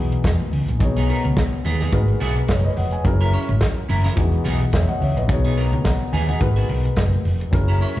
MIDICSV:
0, 0, Header, 1, 6, 480
1, 0, Start_track
1, 0, Key_signature, 5, "major"
1, 0, Tempo, 560224
1, 689, Time_signature, 4, 2, 24, 8
1, 6854, End_track
2, 0, Start_track
2, 0, Title_t, "Grand piano"
2, 0, Program_c, 0, 0
2, 0, Control_c, 0, 64, 127
2, 0, Note_on_c, 0, 52, 64
2, 0, Note_on_c, 0, 59, 60
2, 0, Note_on_c, 0, 63, 60
2, 0, Note_on_c, 0, 66, 62
2, 0, Note_on_c, 0, 68, 76
2, 664, Note_off_c, 0, 52, 0
2, 668, Note_off_c, 0, 59, 0
2, 671, Note_off_c, 0, 63, 0
2, 674, Note_off_c, 0, 66, 0
2, 678, Note_off_c, 0, 68, 0
2, 679, Note_on_c, 0, 47, 67
2, 685, Note_on_c, 0, 59, 59
2, 692, Note_on_c, 0, 63, 66
2, 700, Note_on_c, 0, 68, 62
2, 701, Control_c, 0, 64, 0
2, 705, Note_on_c, 0, 73, 75
2, 857, Control_c, 0, 64, 127
2, 1626, Note_off_c, 0, 47, 0
2, 1628, Note_off_c, 0, 59, 0
2, 1632, Note_off_c, 0, 63, 0
2, 1636, Note_off_c, 0, 68, 0
2, 1638, Note_on_c, 0, 56, 72
2, 1639, Note_off_c, 0, 73, 0
2, 1647, Note_on_c, 0, 63, 58
2, 1651, Note_on_c, 0, 66, 60
2, 1659, Note_on_c, 0, 70, 65
2, 1660, Control_c, 0, 64, 0
2, 1662, Note_on_c, 0, 71, 73
2, 1795, Control_c, 0, 64, 127
2, 2125, Note_off_c, 0, 70, 0
2, 2127, Note_off_c, 0, 71, 0
2, 2137, Note_on_c, 0, 73, 64
2, 2140, Note_on_c, 0, 70, 50
2, 2261, Note_off_c, 0, 73, 0
2, 2263, Note_off_c, 0, 70, 0
2, 2268, Note_on_c, 0, 75, 69
2, 2273, Note_on_c, 0, 71, 58
2, 2365, Note_off_c, 0, 75, 0
2, 2369, Note_off_c, 0, 71, 0
2, 2374, Note_on_c, 0, 78, 66
2, 2378, Note_on_c, 0, 75, 55
2, 2500, Note_off_c, 0, 78, 0
2, 2502, Note_off_c, 0, 75, 0
2, 2505, Note_on_c, 0, 80, 64
2, 2585, Note_off_c, 0, 56, 0
2, 2590, Note_off_c, 0, 63, 0
2, 2592, Note_off_c, 0, 66, 0
2, 2602, Note_on_c, 0, 54, 68
2, 2607, Note_on_c, 0, 61, 63
2, 2614, Note_on_c, 0, 64, 57
2, 2621, Note_on_c, 0, 68, 64
2, 2622, Control_c, 0, 64, 0
2, 2628, Note_on_c, 0, 70, 78
2, 2733, Note_off_c, 0, 80, 0
2, 2751, Control_c, 0, 64, 127
2, 3547, Note_off_c, 0, 54, 0
2, 3550, Note_off_c, 0, 61, 0
2, 3553, Note_off_c, 0, 64, 0
2, 3557, Note_off_c, 0, 68, 0
2, 3560, Note_off_c, 0, 70, 0
2, 3561, Note_on_c, 0, 52, 66
2, 3569, Note_on_c, 0, 59, 65
2, 3574, Note_on_c, 0, 63, 61
2, 3580, Control_c, 0, 64, 0
2, 3580, Note_on_c, 0, 66, 65
2, 3588, Note_on_c, 0, 68, 76
2, 3708, Control_c, 0, 64, 127
2, 4051, Note_on_c, 0, 76, 59
2, 4056, Note_on_c, 0, 73, 49
2, 4179, Note_off_c, 0, 76, 0
2, 4181, Note_off_c, 0, 73, 0
2, 4183, Note_on_c, 0, 78, 76
2, 4187, Note_on_c, 0, 75, 57
2, 4284, Note_off_c, 0, 78, 0
2, 4286, Note_off_c, 0, 75, 0
2, 4288, Note_on_c, 0, 76, 63
2, 4292, Note_on_c, 0, 73, 60
2, 4417, Note_off_c, 0, 76, 0
2, 4419, Note_off_c, 0, 73, 0
2, 4427, Note_on_c, 0, 75, 70
2, 4432, Note_on_c, 0, 71, 56
2, 4506, Note_off_c, 0, 52, 0
2, 4510, Note_off_c, 0, 59, 0
2, 4513, Note_off_c, 0, 63, 0
2, 4516, Note_off_c, 0, 66, 0
2, 4520, Note_off_c, 0, 68, 0
2, 4520, Note_on_c, 0, 47, 72
2, 4525, Note_on_c, 0, 59, 64
2, 4531, Note_on_c, 0, 63, 67
2, 4539, Note_on_c, 0, 68, 63
2, 4541, Control_c, 0, 64, 0
2, 4545, Note_on_c, 0, 73, 81
2, 4654, Note_off_c, 0, 75, 0
2, 4657, Note_off_c, 0, 71, 0
2, 4671, Control_c, 0, 64, 127
2, 5013, Note_on_c, 0, 82, 57
2, 5019, Note_on_c, 0, 78, 51
2, 5239, Note_off_c, 0, 82, 0
2, 5242, Note_off_c, 0, 78, 0
2, 5250, Note_on_c, 0, 80, 69
2, 5377, Note_off_c, 0, 80, 0
2, 5382, Note_on_c, 0, 78, 61
2, 5386, Note_on_c, 0, 75, 46
2, 5465, Note_off_c, 0, 47, 0
2, 5468, Note_off_c, 0, 59, 0
2, 5470, Note_off_c, 0, 63, 0
2, 5475, Note_off_c, 0, 68, 0
2, 5476, Note_on_c, 0, 56, 66
2, 5478, Note_off_c, 0, 73, 0
2, 5483, Note_on_c, 0, 63, 63
2, 5488, Note_on_c, 0, 66, 62
2, 5494, Note_on_c, 0, 70, 62
2, 5499, Control_c, 0, 64, 0
2, 5501, Note_on_c, 0, 71, 84
2, 5610, Note_off_c, 0, 78, 0
2, 5613, Note_off_c, 0, 75, 0
2, 5675, Control_c, 0, 64, 127
2, 6422, Note_off_c, 0, 56, 0
2, 6425, Note_off_c, 0, 63, 0
2, 6428, Note_off_c, 0, 66, 0
2, 6431, Note_off_c, 0, 70, 0
2, 6434, Note_on_c, 0, 54, 66
2, 6435, Note_off_c, 0, 71, 0
2, 6440, Note_on_c, 0, 61, 64
2, 6446, Note_on_c, 0, 64, 61
2, 6453, Note_on_c, 0, 68, 62
2, 6458, Control_c, 0, 64, 0
2, 6459, Note_on_c, 0, 70, 81
2, 6618, Control_c, 0, 64, 127
2, 6854, Note_off_c, 0, 54, 0
2, 6854, Note_off_c, 0, 61, 0
2, 6854, Note_off_c, 0, 64, 0
2, 6854, Note_off_c, 0, 68, 0
2, 6854, Note_off_c, 0, 70, 0
2, 6854, End_track
3, 0, Start_track
3, 0, Title_t, "Clean electric guitar"
3, 0, Program_c, 1, 27
3, 828, Note_on_c, 1, 68, 70
3, 833, Note_on_c, 1, 63, 75
3, 836, Note_on_c, 1, 59, 55
3, 924, Note_off_c, 1, 59, 0
3, 930, Note_off_c, 1, 63, 0
3, 934, Note_on_c, 1, 59, 55
3, 941, Note_off_c, 1, 68, 0
3, 941, Note_on_c, 1, 63, 64
3, 944, Note_on_c, 1, 70, 59
3, 1068, Note_off_c, 1, 59, 0
3, 1068, Note_off_c, 1, 70, 0
3, 1069, Note_off_c, 1, 63, 0
3, 1412, Note_on_c, 1, 59, 68
3, 1419, Note_on_c, 1, 63, 75
3, 1421, Note_on_c, 1, 68, 82
3, 1537, Note_off_c, 1, 68, 0
3, 1544, Note_off_c, 1, 63, 0
3, 1546, Note_off_c, 1, 59, 0
3, 1547, Note_on_c, 1, 68, 67
3, 1554, Note_on_c, 1, 63, 61
3, 1556, Note_on_c, 1, 59, 49
3, 1645, Note_off_c, 1, 59, 0
3, 1654, Note_off_c, 1, 68, 0
3, 1657, Note_off_c, 1, 63, 0
3, 1887, Note_on_c, 1, 59, 92
3, 1892, Note_on_c, 1, 66, 89
3, 1897, Note_on_c, 1, 68, 101
3, 2015, Note_off_c, 1, 68, 0
3, 2020, Note_off_c, 1, 66, 0
3, 2055, Note_off_c, 1, 59, 0
3, 2748, Note_on_c, 1, 70, 73
3, 2751, Note_on_c, 1, 64, 70
3, 2753, Note_on_c, 1, 61, 58
3, 2842, Note_off_c, 1, 61, 0
3, 2844, Note_off_c, 1, 64, 0
3, 2852, Note_on_c, 1, 61, 57
3, 2854, Note_on_c, 1, 64, 62
3, 2856, Note_off_c, 1, 70, 0
3, 2859, Note_on_c, 1, 73, 64
3, 2986, Note_off_c, 1, 64, 0
3, 2986, Note_off_c, 1, 73, 0
3, 2988, Note_off_c, 1, 61, 0
3, 3330, Note_on_c, 1, 61, 76
3, 3336, Note_on_c, 1, 64, 86
3, 3340, Note_on_c, 1, 70, 80
3, 3454, Note_off_c, 1, 70, 0
3, 3458, Note_off_c, 1, 64, 0
3, 3462, Note_off_c, 1, 61, 0
3, 3464, Note_on_c, 1, 70, 71
3, 3468, Note_on_c, 1, 64, 58
3, 3473, Note_on_c, 1, 61, 52
3, 3567, Note_off_c, 1, 61, 0
3, 3567, Note_off_c, 1, 64, 0
3, 3573, Note_off_c, 1, 70, 0
3, 3807, Note_on_c, 1, 59, 85
3, 3812, Note_on_c, 1, 63, 94
3, 3817, Note_on_c, 1, 68, 99
3, 3941, Note_off_c, 1, 68, 0
3, 3948, Note_off_c, 1, 63, 0
3, 3975, Note_off_c, 1, 59, 0
3, 4667, Note_on_c, 1, 68, 67
3, 4673, Note_on_c, 1, 63, 59
3, 4676, Note_on_c, 1, 59, 57
3, 4761, Note_off_c, 1, 59, 0
3, 4767, Note_off_c, 1, 63, 0
3, 4772, Note_on_c, 1, 59, 61
3, 4776, Note_off_c, 1, 68, 0
3, 4778, Note_on_c, 1, 63, 73
3, 4780, Note_on_c, 1, 70, 72
3, 4906, Note_off_c, 1, 70, 0
3, 4907, Note_off_c, 1, 59, 0
3, 4910, Note_off_c, 1, 63, 0
3, 5252, Note_on_c, 1, 59, 72
3, 5256, Note_on_c, 1, 63, 87
3, 5264, Note_on_c, 1, 68, 88
3, 5376, Note_off_c, 1, 68, 0
3, 5378, Note_off_c, 1, 63, 0
3, 5385, Note_off_c, 1, 59, 0
3, 5386, Note_on_c, 1, 68, 62
3, 5388, Note_on_c, 1, 63, 60
3, 5395, Note_on_c, 1, 59, 48
3, 5483, Note_off_c, 1, 59, 0
3, 5488, Note_off_c, 1, 68, 0
3, 5491, Note_off_c, 1, 63, 0
3, 5622, Note_on_c, 1, 68, 68
3, 5628, Note_on_c, 1, 66, 66
3, 5631, Note_on_c, 1, 59, 54
3, 5723, Note_off_c, 1, 59, 0
3, 5727, Note_off_c, 1, 66, 0
3, 5729, Note_off_c, 1, 68, 0
3, 6582, Note_on_c, 1, 70, 76
3, 6586, Note_on_c, 1, 64, 66
3, 6591, Note_on_c, 1, 61, 56
3, 6681, Note_off_c, 1, 61, 0
3, 6681, Note_off_c, 1, 64, 0
3, 6691, Note_on_c, 1, 61, 55
3, 6692, Note_on_c, 1, 64, 63
3, 6694, Note_off_c, 1, 70, 0
3, 6698, Note_on_c, 1, 73, 63
3, 6819, Note_off_c, 1, 64, 0
3, 6820, Note_off_c, 1, 73, 0
3, 6825, Note_off_c, 1, 61, 0
3, 6854, End_track
4, 0, Start_track
4, 0, Title_t, "Fingered electric bass"
4, 0, Program_c, 2, 33
4, 0, Note_on_c, 2, 35, 87
4, 135, Note_off_c, 2, 35, 0
4, 209, Note_on_c, 2, 40, 84
4, 300, Note_off_c, 2, 40, 0
4, 454, Note_on_c, 2, 37, 89
4, 544, Note_off_c, 2, 37, 0
4, 590, Note_on_c, 2, 34, 78
4, 660, Note_off_c, 2, 34, 0
4, 692, Note_on_c, 2, 35, 97
4, 946, Note_off_c, 2, 35, 0
4, 1073, Note_on_c, 2, 37, 78
4, 1141, Note_off_c, 2, 37, 0
4, 1421, Note_on_c, 2, 39, 80
4, 1580, Note_off_c, 2, 39, 0
4, 1653, Note_on_c, 2, 32, 97
4, 1815, Note_off_c, 2, 32, 0
4, 1897, Note_on_c, 2, 35, 86
4, 2058, Note_off_c, 2, 35, 0
4, 2133, Note_on_c, 2, 30, 82
4, 2295, Note_off_c, 2, 30, 0
4, 2375, Note_on_c, 2, 29, 78
4, 2537, Note_off_c, 2, 29, 0
4, 2613, Note_on_c, 2, 30, 99
4, 2867, Note_off_c, 2, 30, 0
4, 2990, Note_on_c, 2, 32, 94
4, 3060, Note_off_c, 2, 32, 0
4, 3336, Note_on_c, 2, 30, 79
4, 3498, Note_off_c, 2, 30, 0
4, 3573, Note_on_c, 2, 28, 94
4, 3736, Note_off_c, 2, 28, 0
4, 3818, Note_on_c, 2, 35, 86
4, 3978, Note_off_c, 2, 35, 0
4, 4054, Note_on_c, 2, 40, 95
4, 4145, Note_off_c, 2, 40, 0
4, 4295, Note_on_c, 2, 37, 84
4, 4385, Note_off_c, 2, 37, 0
4, 4427, Note_on_c, 2, 34, 76
4, 4536, Note_off_c, 2, 34, 0
4, 4536, Note_on_c, 2, 35, 102
4, 4909, Note_off_c, 2, 35, 0
4, 4909, Note_on_c, 2, 37, 85
4, 4980, Note_off_c, 2, 37, 0
4, 5254, Note_on_c, 2, 39, 74
4, 5416, Note_off_c, 2, 39, 0
4, 5494, Note_on_c, 2, 32, 96
4, 5655, Note_off_c, 2, 32, 0
4, 5733, Note_on_c, 2, 35, 92
4, 5895, Note_off_c, 2, 35, 0
4, 5972, Note_on_c, 2, 30, 77
4, 6134, Note_off_c, 2, 30, 0
4, 6211, Note_on_c, 2, 29, 77
4, 6373, Note_off_c, 2, 29, 0
4, 6452, Note_on_c, 2, 30, 99
4, 6705, Note_off_c, 2, 30, 0
4, 6854, End_track
5, 0, Start_track
5, 0, Title_t, "Muted clean electric guitar strokes"
5, 103, Note_on_c, 9, 29, 36
5, 189, Note_off_c, 9, 29, 0
5, 214, Note_on_c, 9, 29, 35
5, 299, Note_off_c, 9, 29, 0
5, 347, Note_on_c, 9, 29, 44
5, 433, Note_off_c, 9, 29, 0
5, 585, Note_on_c, 9, 29, 42
5, 671, Note_off_c, 9, 29, 0
5, 695, Note_on_c, 9, 29, 39
5, 781, Note_off_c, 9, 29, 0
5, 1072, Note_on_c, 9, 29, 54
5, 1157, Note_off_c, 9, 29, 0
5, 1182, Note_on_c, 9, 29, 41
5, 1268, Note_off_c, 9, 29, 0
5, 1310, Note_on_c, 9, 29, 40
5, 1396, Note_off_c, 9, 29, 0
5, 1656, Note_on_c, 9, 29, 40
5, 1741, Note_off_c, 9, 29, 0
5, 1784, Note_on_c, 9, 29, 43
5, 1869, Note_off_c, 9, 29, 0
5, 2025, Note_on_c, 9, 29, 44
5, 2110, Note_off_c, 9, 29, 0
5, 2127, Note_on_c, 9, 29, 45
5, 2213, Note_off_c, 9, 29, 0
5, 2262, Note_on_c, 9, 29, 35
5, 2348, Note_off_c, 9, 29, 0
5, 2497, Note_on_c, 9, 29, 45
5, 2583, Note_off_c, 9, 29, 0
5, 2614, Note_on_c, 9, 29, 45
5, 2699, Note_off_c, 9, 29, 0
5, 2989, Note_on_c, 9, 29, 46
5, 3075, Note_off_c, 9, 29, 0
5, 3095, Note_on_c, 9, 29, 49
5, 3181, Note_off_c, 9, 29, 0
5, 3228, Note_on_c, 9, 29, 40
5, 3313, Note_off_c, 9, 29, 0
5, 3571, Note_on_c, 9, 29, 40
5, 3656, Note_off_c, 9, 29, 0
5, 3702, Note_on_c, 9, 29, 30
5, 3788, Note_off_c, 9, 29, 0
5, 3952, Note_on_c, 9, 29, 40
5, 4037, Note_off_c, 9, 29, 0
5, 4052, Note_on_c, 9, 29, 41
5, 4138, Note_off_c, 9, 29, 0
5, 4190, Note_on_c, 9, 29, 44
5, 4275, Note_off_c, 9, 29, 0
5, 4431, Note_on_c, 9, 29, 39
5, 4516, Note_off_c, 9, 29, 0
5, 4530, Note_on_c, 9, 29, 35
5, 4615, Note_off_c, 9, 29, 0
5, 4909, Note_on_c, 9, 29, 47
5, 4995, Note_off_c, 9, 29, 0
5, 5007, Note_on_c, 9, 29, 38
5, 5092, Note_off_c, 9, 29, 0
5, 5149, Note_on_c, 9, 29, 49
5, 5234, Note_off_c, 9, 29, 0
5, 5494, Note_on_c, 9, 29, 45
5, 5579, Note_off_c, 9, 29, 0
5, 5733, Note_on_c, 9, 29, 43
5, 5819, Note_off_c, 9, 29, 0
5, 5866, Note_on_c, 9, 29, 35
5, 5952, Note_off_c, 9, 29, 0
5, 5970, Note_on_c, 9, 29, 43
5, 6055, Note_off_c, 9, 29, 0
5, 6104, Note_on_c, 9, 29, 46
5, 6190, Note_off_c, 9, 29, 0
5, 6343, Note_on_c, 9, 29, 32
5, 6429, Note_off_c, 9, 29, 0
5, 6451, Note_on_c, 9, 29, 44
5, 6537, Note_off_c, 9, 29, 0
5, 6824, Note_on_c, 9, 29, 43
5, 6854, Note_off_c, 9, 29, 0
5, 6854, End_track
6, 0, Start_track
6, 0, Title_t, "Drums"
6, 103, Note_on_c, 9, 42, 46
6, 189, Note_off_c, 9, 42, 0
6, 204, Note_on_c, 9, 42, 51
6, 207, Note_on_c, 9, 36, 86
6, 208, Note_on_c, 9, 62, 35
6, 213, Note_on_c, 9, 38, 96
6, 290, Note_off_c, 9, 42, 0
6, 293, Note_off_c, 9, 36, 0
6, 294, Note_off_c, 9, 62, 0
6, 298, Note_off_c, 9, 38, 0
6, 340, Note_on_c, 9, 63, 65
6, 425, Note_off_c, 9, 63, 0
6, 440, Note_on_c, 9, 62, 33
6, 452, Note_on_c, 9, 46, 60
6, 526, Note_off_c, 9, 62, 0
6, 538, Note_off_c, 9, 46, 0
6, 586, Note_on_c, 9, 42, 47
6, 671, Note_off_c, 9, 42, 0
6, 687, Note_on_c, 9, 62, 34
6, 689, Note_on_c, 9, 36, 122
6, 690, Note_on_c, 9, 42, 80
6, 773, Note_off_c, 9, 62, 0
6, 775, Note_off_c, 9, 36, 0
6, 775, Note_off_c, 9, 42, 0
6, 935, Note_on_c, 9, 46, 62
6, 1020, Note_off_c, 9, 46, 0
6, 1056, Note_on_c, 9, 63, 61
6, 1066, Note_on_c, 9, 42, 45
6, 1141, Note_off_c, 9, 63, 0
6, 1152, Note_off_c, 9, 42, 0
6, 1169, Note_on_c, 9, 62, 33
6, 1172, Note_on_c, 9, 36, 107
6, 1172, Note_on_c, 9, 38, 91
6, 1173, Note_on_c, 9, 42, 66
6, 1255, Note_off_c, 9, 62, 0
6, 1257, Note_off_c, 9, 36, 0
6, 1257, Note_off_c, 9, 38, 0
6, 1259, Note_off_c, 9, 42, 0
6, 1409, Note_on_c, 9, 46, 55
6, 1412, Note_on_c, 9, 62, 28
6, 1412, Note_on_c, 9, 63, 59
6, 1412, Note_on_c, 9, 64, 58
6, 1495, Note_off_c, 9, 46, 0
6, 1497, Note_off_c, 9, 62, 0
6, 1497, Note_off_c, 9, 63, 0
6, 1497, Note_off_c, 9, 64, 0
6, 1541, Note_on_c, 9, 64, 83
6, 1544, Note_on_c, 9, 42, 45
6, 1545, Note_on_c, 9, 38, 39
6, 1627, Note_off_c, 9, 64, 0
6, 1630, Note_off_c, 9, 38, 0
6, 1630, Note_off_c, 9, 42, 0
6, 1650, Note_on_c, 9, 36, 109
6, 1650, Note_on_c, 9, 62, 34
6, 1650, Note_on_c, 9, 63, 81
6, 1651, Note_on_c, 9, 42, 66
6, 1736, Note_off_c, 9, 36, 0
6, 1736, Note_off_c, 9, 62, 0
6, 1736, Note_off_c, 9, 63, 0
6, 1737, Note_off_c, 9, 42, 0
6, 1888, Note_on_c, 9, 46, 76
6, 1893, Note_on_c, 9, 62, 37
6, 1973, Note_off_c, 9, 46, 0
6, 1978, Note_off_c, 9, 62, 0
6, 2026, Note_on_c, 9, 42, 44
6, 2112, Note_off_c, 9, 42, 0
6, 2125, Note_on_c, 9, 42, 56
6, 2130, Note_on_c, 9, 36, 78
6, 2134, Note_on_c, 9, 38, 101
6, 2211, Note_off_c, 9, 42, 0
6, 2216, Note_off_c, 9, 36, 0
6, 2219, Note_off_c, 9, 38, 0
6, 2266, Note_on_c, 9, 63, 69
6, 2352, Note_off_c, 9, 63, 0
6, 2370, Note_on_c, 9, 46, 62
6, 2372, Note_on_c, 9, 62, 31
6, 2456, Note_off_c, 9, 46, 0
6, 2457, Note_off_c, 9, 62, 0
6, 2506, Note_on_c, 9, 42, 47
6, 2592, Note_off_c, 9, 42, 0
6, 2608, Note_on_c, 9, 42, 68
6, 2611, Note_on_c, 9, 36, 114
6, 2617, Note_on_c, 9, 62, 35
6, 2694, Note_off_c, 9, 42, 0
6, 2697, Note_off_c, 9, 36, 0
6, 2703, Note_off_c, 9, 62, 0
6, 2855, Note_on_c, 9, 46, 58
6, 2857, Note_on_c, 9, 62, 34
6, 2941, Note_off_c, 9, 46, 0
6, 2943, Note_off_c, 9, 62, 0
6, 2986, Note_on_c, 9, 42, 43
6, 2987, Note_on_c, 9, 63, 61
6, 3072, Note_off_c, 9, 42, 0
6, 3072, Note_off_c, 9, 63, 0
6, 3091, Note_on_c, 9, 38, 98
6, 3093, Note_on_c, 9, 42, 62
6, 3094, Note_on_c, 9, 36, 100
6, 3096, Note_on_c, 9, 62, 38
6, 3177, Note_off_c, 9, 38, 0
6, 3178, Note_off_c, 9, 42, 0
6, 3179, Note_off_c, 9, 36, 0
6, 3182, Note_off_c, 9, 62, 0
6, 3333, Note_on_c, 9, 46, 60
6, 3333, Note_on_c, 9, 62, 26
6, 3333, Note_on_c, 9, 63, 62
6, 3333, Note_on_c, 9, 64, 58
6, 3418, Note_off_c, 9, 62, 0
6, 3418, Note_off_c, 9, 63, 0
6, 3418, Note_off_c, 9, 64, 0
6, 3419, Note_off_c, 9, 46, 0
6, 3466, Note_on_c, 9, 38, 36
6, 3466, Note_on_c, 9, 42, 40
6, 3469, Note_on_c, 9, 64, 74
6, 3551, Note_off_c, 9, 42, 0
6, 3552, Note_off_c, 9, 38, 0
6, 3555, Note_off_c, 9, 64, 0
6, 3572, Note_on_c, 9, 36, 90
6, 3572, Note_on_c, 9, 62, 38
6, 3572, Note_on_c, 9, 63, 83
6, 3573, Note_on_c, 9, 42, 70
6, 3657, Note_off_c, 9, 62, 0
6, 3657, Note_off_c, 9, 63, 0
6, 3658, Note_off_c, 9, 36, 0
6, 3659, Note_off_c, 9, 42, 0
6, 3810, Note_on_c, 9, 46, 77
6, 3818, Note_on_c, 9, 62, 37
6, 3896, Note_off_c, 9, 46, 0
6, 3903, Note_off_c, 9, 62, 0
6, 3951, Note_on_c, 9, 42, 44
6, 4036, Note_off_c, 9, 42, 0
6, 4050, Note_on_c, 9, 42, 50
6, 4053, Note_on_c, 9, 36, 81
6, 4053, Note_on_c, 9, 62, 33
6, 4059, Note_on_c, 9, 38, 92
6, 4136, Note_off_c, 9, 42, 0
6, 4138, Note_off_c, 9, 36, 0
6, 4139, Note_off_c, 9, 62, 0
6, 4144, Note_off_c, 9, 38, 0
6, 4186, Note_on_c, 9, 63, 71
6, 4271, Note_off_c, 9, 63, 0
6, 4287, Note_on_c, 9, 62, 31
6, 4296, Note_on_c, 9, 46, 65
6, 4373, Note_off_c, 9, 62, 0
6, 4382, Note_off_c, 9, 46, 0
6, 4433, Note_on_c, 9, 42, 50
6, 4518, Note_off_c, 9, 42, 0
6, 4533, Note_on_c, 9, 36, 126
6, 4535, Note_on_c, 9, 42, 72
6, 4619, Note_off_c, 9, 36, 0
6, 4621, Note_off_c, 9, 42, 0
6, 4772, Note_on_c, 9, 62, 33
6, 4776, Note_on_c, 9, 46, 60
6, 4858, Note_off_c, 9, 62, 0
6, 4862, Note_off_c, 9, 46, 0
6, 4901, Note_on_c, 9, 63, 61
6, 4908, Note_on_c, 9, 42, 46
6, 4986, Note_off_c, 9, 63, 0
6, 4993, Note_off_c, 9, 42, 0
6, 5010, Note_on_c, 9, 38, 88
6, 5012, Note_on_c, 9, 42, 63
6, 5013, Note_on_c, 9, 36, 99
6, 5095, Note_off_c, 9, 38, 0
6, 5097, Note_off_c, 9, 42, 0
6, 5099, Note_off_c, 9, 36, 0
6, 5249, Note_on_c, 9, 62, 25
6, 5249, Note_on_c, 9, 63, 58
6, 5249, Note_on_c, 9, 64, 54
6, 5250, Note_on_c, 9, 46, 66
6, 5335, Note_off_c, 9, 62, 0
6, 5335, Note_off_c, 9, 63, 0
6, 5335, Note_off_c, 9, 64, 0
6, 5336, Note_off_c, 9, 46, 0
6, 5380, Note_on_c, 9, 64, 78
6, 5385, Note_on_c, 9, 42, 43
6, 5466, Note_off_c, 9, 64, 0
6, 5471, Note_off_c, 9, 42, 0
6, 5489, Note_on_c, 9, 63, 69
6, 5490, Note_on_c, 9, 36, 109
6, 5491, Note_on_c, 9, 42, 68
6, 5574, Note_off_c, 9, 63, 0
6, 5576, Note_off_c, 9, 36, 0
6, 5577, Note_off_c, 9, 42, 0
6, 5730, Note_on_c, 9, 46, 79
6, 5816, Note_off_c, 9, 46, 0
6, 5869, Note_on_c, 9, 42, 44
6, 5954, Note_off_c, 9, 42, 0
6, 5964, Note_on_c, 9, 42, 56
6, 5969, Note_on_c, 9, 36, 84
6, 5971, Note_on_c, 9, 62, 38
6, 5973, Note_on_c, 9, 38, 89
6, 6050, Note_off_c, 9, 42, 0
6, 6055, Note_off_c, 9, 36, 0
6, 6057, Note_off_c, 9, 62, 0
6, 6059, Note_off_c, 9, 38, 0
6, 6106, Note_on_c, 9, 63, 70
6, 6192, Note_off_c, 9, 63, 0
6, 6212, Note_on_c, 9, 46, 61
6, 6298, Note_off_c, 9, 46, 0
6, 6349, Note_on_c, 9, 42, 49
6, 6435, Note_off_c, 9, 42, 0
6, 6450, Note_on_c, 9, 36, 114
6, 6450, Note_on_c, 9, 64, 78
6, 6452, Note_on_c, 9, 42, 80
6, 6535, Note_off_c, 9, 36, 0
6, 6536, Note_off_c, 9, 64, 0
6, 6537, Note_off_c, 9, 42, 0
6, 6692, Note_on_c, 9, 62, 36
6, 6697, Note_on_c, 9, 46, 58
6, 6778, Note_off_c, 9, 62, 0
6, 6783, Note_off_c, 9, 46, 0
6, 6819, Note_on_c, 9, 63, 67
6, 6828, Note_on_c, 9, 42, 48
6, 6854, Note_off_c, 9, 42, 0
6, 6854, Note_off_c, 9, 63, 0
6, 6854, End_track
0, 0, End_of_file